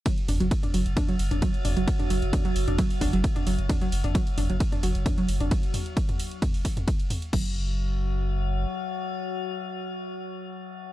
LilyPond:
<<
  \new Staff \with { instrumentName = "Synth drone" } { \time 4/4 \key d \lydian \tempo 4 = 132 <fis fis'>1~ | <fis fis'>1~ | <fis fis'>1 | r1 |
<fis fis'>1~ | <fis fis'>1 | }
  \new Staff \with { instrumentName = "Synth arpeggio sound" } { \clef bass \time 4/4 \key d \lydian fis16 r16 d'16 fis16 r16 d'16 fis16 r16 d'16 fis16 r16 d'16 fis16 r16 d'16 fis16 | r16 d'16 fis16 r16 d'16 fis16 r16 d'16 fis16 r16 d'16 fis16 r16 d'16 fis16 r16 | d'16 fis16 r16 d'16 fis16 r16 d'16 fis16 r16 d'16 fis16 r16 d'16 fis16 r16 d'16 | r1 |
fis8 r2. r8 | r1 | }
  \new Staff \with { instrumentName = "Sub bass" } { \clef bass \time 4/4 \key d \lydian r8 fis,,16 fis,,16 r8 fis,,16 fis,,16 r8 fis,,16 fis,,16 r8 fis,,16 fis,,16 | r8 fis,,16 fis,,16 r8 fis,,16 fis,,16 r8 fis,,16 fis,,16 r8 fis,,16 fis,,16 | r8 fis,,16 fis,,16 r8 fis,,16 fis,,16 r8 fis,,16 fis,,16 r8 fis,,16 fis,,16 | r1 |
fis,,2. r4 | r1 | }
  \new DrumStaff \with { instrumentName = "Drums" } \drummode { \time 4/4 <hh bd cymr>16 hh16 <hho toml>16 hh16 <hh bd cymr>16 <hh toml>16 hho16 hh16 <hh bd cymr toml>16 hh16 hho16 <hh toml>16 <hh bd cymr>16 hh16 <hho toml>16 hh16 | <hh bd cymr>16 <hh toml>16 hho16 hh16 <hh bd cymr toml>16 hh16 hho16 <hh toml>16 <hh bd cymr>16 hho16 <hho bd toml>16 hh16 <hh bd cymr>16 <hh toml>16 hho16 hh16 | <hh bd cymr toml>16 hh16 hho16 <hh toml>16 <hh bd cymr>16 hh16 <hho toml>16 hh16 <hh bd cymr>16 <hh toml>16 hho16 hh16 <hh bd cymr toml>16 hh16 hho16 <hh toml>16 | <hh bd cymr>16 hh16 <hho toml>16 hh16 <hh bd cymr>16 <hh toml>16 hho16 hh16 <hh bd cymr toml>16 hho16 <hho bd>16 <hh toml>16 <hh bd cymr>16 hh16 <hho toml>16 hh16 |
<cymc bd>4 r4 r4 r4 | r4 r4 r4 r4 | }
>>